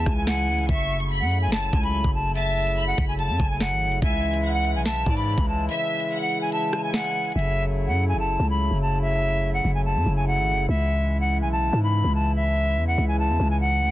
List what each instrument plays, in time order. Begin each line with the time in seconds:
Already playing: harmonium C#3 E3 G#3 E4, flute A5
0.06 808-style bass C#2, violin section G#5, kick, cross-stick, closed hi-hat
0.17 flute G#5
0.27 flute F#5, snare
0.38 closed hi-hat
0.48 808-style bass D2
0.58 808-style bass C#2, closed hi-hat
0.65 808-style bass F#1, harmonium F#3 A3, flute E5, violin section C#6, kick, closed hi-hat
0.72 closed hi-hat
1.00 closed hi-hat
1.11 violin section B5
1.21 808-style bass F#2, flute F#5
1.31 closed hi-hat
1.42 flute G#5
1.47 808-style bass F#1
1.52 violin section A5, flute A5, snare, closed hi-hat
1.63 closed hi-hat
1.73 808-style bass C#2, violin section G#5, kick
1.83 flute B5, closed hi-hat
2.04 808-style bass F#1, kick, closed hi-hat
2.15 flute A5
2.35 flute E5, violin section A5, closed hi-hat
2.67 closed hi-hat
2.77 violin section B5
2.87 flute F#5
2.98 808-style bass F#1, kick
3.08 flute G#5
3.18 flute A5, violin section A5, closed hi-hat
3.29 808-style bass F#2
3.40 808-style bass F#1, violin section G#5, kick, closed hi-hat
3.50 flute G#5
3.60 flute F#5, snare
3.71 808-style bass G#1, closed hi-hat
3.87 808-style bass F#1
3.92 closed hi-hat
4.02 808-style bass C#2, harmonium E3 G#3 E4, flute E5, violin section G#5, kick, closed hi-hat
4.34 closed hi-hat
4.44 violin section F#5
4.54 flute F#5
4.65 closed hi-hat
4.75 808-style bass B1, flute G#5
4.85 violin section E5, flute A5, snare, closed hi-hat
4.96 closed hi-hat
5.06 808-style bass G#2, violin section D5, kick
5.17 flute B5, closed hi-hat
5.38 808-style bass C#2, kick, closed hi-hat
5.48 flute A5
5.69 violin section E5, flute E5, closed hi-hat
6.00 closed hi-hat
6.11 violin section F#5
6.21 flute F#5
6.41 flute G#5
6.52 violin section E5, flute A5, closed hi-hat
6.73 violin section G#5, cross-stick, closed hi-hat
6.84 flute G#5
6.94 flute F#5, snare
7.04 closed hi-hat
7.25 closed hi-hat
7.32 808-style bass F#1, harmonium C#3 F#3 A3 E4, flute E5, closed hi-hat
7.39 closed hi-hat
7.87 808-style bass F#2, flute F#5
8.09 flute G#5
8.14 808-style bass F#1
8.19 flute A5
8.40 808-style bass C#2
8.50 flute B5
8.71 808-style bass F#1
8.81 flute A5
9.02 flute E5
9.54 flute F#5
9.65 808-style bass F#1
9.75 flute G#5
9.85 flute A5
9.96 808-style bass F#2
10.06 808-style bass F#1
10.17 flute G#5
10.27 flute F#5
10.37 808-style bass G#1
10.53 808-style bass F#1
10.69 808-style bass C#2, harmonium C#3 E3 G#3, flute E5
11.20 flute F#5
11.42 808-style bass B1, flute G#5
11.52 flute A5
11.73 808-style bass G#2
11.83 flute B5
12.04 808-style bass C#2
12.15 flute A5
12.36 flute E5
12.77 808-style bass E2
12.88 flute F#5
12.98 808-style bass C#2
13.08 flute G#5
13.19 flute A5
13.29 808-style bass E2
13.40 808-style bass C#2
13.50 flute G#5
13.61 flute F#5
13.81 808-style bass D2